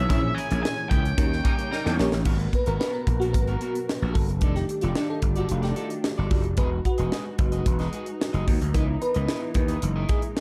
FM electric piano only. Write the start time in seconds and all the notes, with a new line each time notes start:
Already playing: B3 E4 G#4 A4 C#5
0.10 C#4 E4 G#4 A#4 C#5
1.18 C#4 D#4 F#4 A#4 C#5
1.25 G4
2.00 C#4 D#4 G4 A#4 C#5
2.27 F#3 A#3 B3
2.55 B4
2.67 A#4
2.80 B4
2.94 A#4
3.20 F#4
3.33 F#3 A#3 B3 A#4
4.14 A4
4.41 D#3 G3 A3 D4
4.56 G4
4.82 F4
4.95 D4
5.10 A4
5.37 F#4
5.51 F4
5.64 G4
6.58 B4
6.85 F#4
7.39 F#3 G#3 D#4
8.73 E3 B3 D#4 A#4
9.02 B4
9.82 E3 G#3 A#3 D#4
10.09 G#4